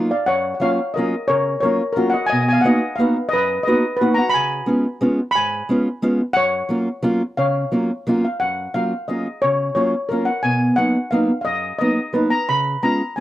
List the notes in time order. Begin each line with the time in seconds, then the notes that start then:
Already playing: F#3 A#3 D#4 F4
0.11 D5 F5
0.26 F#2 C#5 F#5
0.54 F#5
0.60 F#3 A#3 C#4 F4 C#5 F5
0.94 F#3 A#3 C#4 A#4 D#5
0.98 F4
1.28 C#3 A#4 C#5
1.60 F#3 A#3 C#4 A#4 C#5
1.65 F4
1.93 F#3 A#4
1.97 A#3 C#4 F4 F#4
2.10 D#5 F#5
2.26 D#5 G#5
2.32 B2
2.41 G#5
2.49 G#5
2.53 F5
2.61 A#3 B3 F#5
2.66 D#4 F#4 D#5
2.96 A#3 B3 F5
3.00 D#4 F#4 B4
3.29 D#5
3.33 F#2 B4
3.63 A#3 B3 D#5
3.68 D#4 F#4 B4
3.97 B4
4.01 A#3 B3 D#4 F#4
4.14 F#5 A#5
4.29 B5
4.34 C#3 G#5
4.66 G#3 B3 C#4 F4
5.01 G#3 B3 C#4 F4
5.31 B5
5.36 G#2 G#5
5.69 G#3 B3 C#4 F4
6.02 G#3 B3 C#4 F4
6.33 F#2 C#5 F#5
6.69 F#3 A#3 C#4 F4
7.03 F#3 A#3 C#4 F4
7.37 C#3 C#5 F5
7.72 F#3 A#3 C#4 F4
8.07 F#3 A#3 C#4 F4
8.25 F5
8.40 F#2 F#5
8.74 F#3 A#3 C#4 F4 F5
9.08 F#3 A#3 C#4 F4 D#5
9.42 C#3 C#5
9.75 F#3 A#3 C#4 F4 C#5
10.09 F#3 A#3 C#4 F4 A#4
10.25 F#5
10.43 B2 G#5
10.76 F#3 A#3 B3 D#4 F#5
11.11 F#3 A#3 B3 D#4 F5
11.41 D#5 F5
11.45 F#2
11.79 F#3 A#3 B3 D#4 D#5
12.13 F#3 A#3 B3 D#4 B4
12.30 A#5
12.49 C#3 B5
12.83 G#3 B3 C#4 F4 A#5
13.16 G#3 G#5